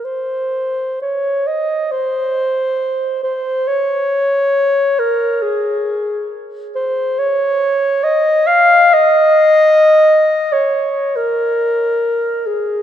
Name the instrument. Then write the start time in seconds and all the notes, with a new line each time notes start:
clarinet
0.04 C5
1.02 C#5
1.47 D#5
1.92 C5
3.23 C5
3.67 C#5
4.99 A#4
5.42 G#4
6.75 C5
7.19 C#5
8.03 D#5
8.47 F5
8.94 D#5
10.52 C#5
11.16 A#4
12.46 G#4